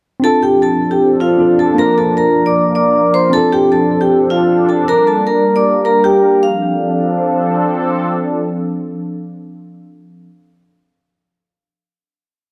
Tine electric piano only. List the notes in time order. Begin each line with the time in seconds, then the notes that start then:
0.20 C4 D4
0.25 F4 A4
1.38 C4 D4 F4 A4
1.74 A#3 D4
1.79 F4 A#4
3.30 C4 D4
3.35 F4 A4